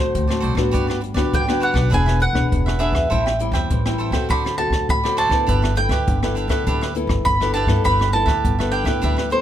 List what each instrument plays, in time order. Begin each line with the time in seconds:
Already playing: upright bass D2, nylon-string guitar D3 A3 C4 F#4, mandolin C5
0.15 upright bass D2, nylon-string guitar A2, kick, closed hi-hat
0.28 nylon-string guitar A3, cavaquinho A4 C5 D5, cross-stick, closed hi-hat
0.32 nylon-string guitar C4 F#4
0.40 upright bass B1, cavaquinho F#4 A4 C5 D5, closed hi-hat
0.55 upright bass A1, nylon-string guitar B3 D4 F#4, cavaquinho A4 C5 D5, kick, cross-stick, closed hi-hat
0.71 upright bass G1, nylon-string guitar G3, cavaquinho F#4 G4 B4 D5, kick, closed hi-hat
0.87 cavaquinho G4 B4 D5, cross-stick
1.01 muted cavaquinho stroke, closed hi-hat
1.14 upright bass D2, nylon-string guitar B3 D4 F#4, cavaquinho G4 B4 D5, kick, cross-stick
1.33 upright bass G1, nylon-string guitar D3, mandolin G5, kick, closed hi-hat
1.47 nylon-string guitar B3 D4 F#4, cavaquinho G4 B4 D5, cross-stick
1.60 cavaquinho F#4 G4 B4 D5, mandolin F#5, closed hi-hat
1.74 upright bass B1, cavaquinho G4 B4 D5, kick, cross-stick
1.90 upright bass E1, nylon-string guitar E3 B3 D4, cavaquinho D4 G#4 B4 E5, kick, closed hi-hat
1.94 nylon-string guitar G#4, mandolin G#5
2.06 cavaquinho G#4 B4 E5, cross-stick
2.20 mandolin F#5, muted cavaquinho stroke, closed hi-hat
2.33 upright bass E1, nylon-string guitar B3 D4 G#4, kick, cross-stick
2.52 upright bass E1, nylon-string guitar B2, kick, closed hi-hat
2.66 cavaquinho G#4 B4 E5, cross-stick, closed hi-hat
2.79 nylon-string guitar B3 D4 G#4, cavaquinho D4 G#4 B4 E5, mandolin E5, closed hi-hat
2.92 upright bass E2, cavaquinho G#4 B4 E5, kick, cross-stick, closed hi-hat
3.10 upright bass A1, nylon-string guitar A2 G3 C4 E4, cavaquinho A4 C5 E5 G5, kick, closed hi-hat
3.26 cavaquinho C5 E5 G5, cross-stick
3.39 nylon-string guitar G3 C4 E4, muted cavaquinho stroke, closed hi-hat
3.52 upright bass E2, cavaquinho C5 E5 G5, kick, cross-stick
3.70 upright bass A1, nylon-string guitar E3, kick, closed hi-hat
3.86 nylon-string guitar G3 C4 E4, cavaquinho C5 E5 G5, cross-stick
3.98 cavaquinho A4 C5 E5 G5, closed hi-hat
4.11 upright bass E2, nylon-string guitar C4 F#4 A4, cavaquinho C5 E5 G5, kick, cross-stick, closed hi-hat
4.29 upright bass D2, nylon-string guitar D3, cavaquinho F#4 A4 C5 D5, mandolin B5, kick, closed hi-hat
4.45 cavaquinho A4 C5 D5, cross-stick
4.58 nylon-string guitar C4 F#4 A4, mandolin A5, muted cavaquinho stroke, closed hi-hat
4.70 upright bass D2, kick, cross-stick
4.89 upright bass D2, nylon-string guitar A2, mandolin B5, kick, closed hi-hat
5.03 nylon-string guitar C4 F#4 A4, cavaquinho A4 C5 D5, cross-stick, closed hi-hat
5.17 cavaquinho F#4 A4 C5 D5, mandolin A5, closed hi-hat
5.30 upright bass D2, nylon-string guitar B3 E4 A4, cavaquinho A4 C5 D5, kick, cross-stick, closed hi-hat
5.47 upright bass G1, nylon-string guitar G3, cavaquinho D4 G4 B4 E5, kick, closed hi-hat
5.62 cavaquinho G4 B4 E5, cross-stick
5.76 nylon-string guitar B3 E4 A4, mandolin G5, muted cavaquinho stroke, closed hi-hat
5.89 upright bass D2, cavaquinho G4 B4 E5, kick, cross-stick
6.07 upright bass G1, nylon-string guitar D3, kick, closed hi-hat
6.22 nylon-string guitar B3 E4 A4, cavaquinho G4 B4 E5, cross-stick
6.35 cavaquinho D4 G4 B4 E5, closed hi-hat
6.48 upright bass D2, nylon-string guitar B3 E4 A4, cavaquinho G4 B4 E5, kick, cross-stick
6.67 upright bass D2, nylon-string guitar G3, cavaquinho D4 G4 B4 E5, kick, closed hi-hat
6.81 cavaquinho G4 B4 E5, cross-stick
6.95 nylon-string guitar B3 E4 A4, muted cavaquinho stroke, closed hi-hat
7.07 upright bass G1, kick, cross-stick
7.25 upright bass G1, nylon-string guitar D3, mandolin B5, kick, closed hi-hat
7.40 nylon-string guitar B3 E4 A4, cavaquinho G4 B4 E5, cross-stick, closed hi-hat
7.54 cavaquinho D4 G4 B4 E5, mandolin A5, closed hi-hat
7.66 upright bass G2, nylon-string guitar B3 E4 A4, cavaquinho G4 B4 E5, kick, cross-stick, closed hi-hat
7.84 upright bass G1, nylon-string guitar G3, cavaquinho D4 G4 B4 E5, mandolin B5, kick, closed hi-hat
8.00 cavaquinho G4 B4 E5, cross-stick
8.12 nylon-string guitar B3 E4 A4, mandolin A5, muted cavaquinho stroke, closed hi-hat
8.26 upright bass D2, cavaquinho G4 B4 E5, kick, cross-stick
8.44 upright bass G1, nylon-string guitar D3, kick, closed hi-hat
8.59 nylon-string guitar B3 E4 A4, cavaquinho G4 B4 E5, cross-stick
8.71 cavaquinho D4 G4 B4 E5, mandolin G5, closed hi-hat
8.84 upright bass D2, nylon-string guitar B3 E4 A4, cavaquinho G4 B4 E5, kick, cross-stick, closed hi-hat
9.02 upright bass D2, nylon-string guitar G3, cavaquinho D4 G4 B4 E5, kick, closed hi-hat
9.16 cavaquinho G4 B4 E5, cross-stick
9.30 nylon-string guitar B3 E4 A4, mandolin C5, muted cavaquinho stroke, closed hi-hat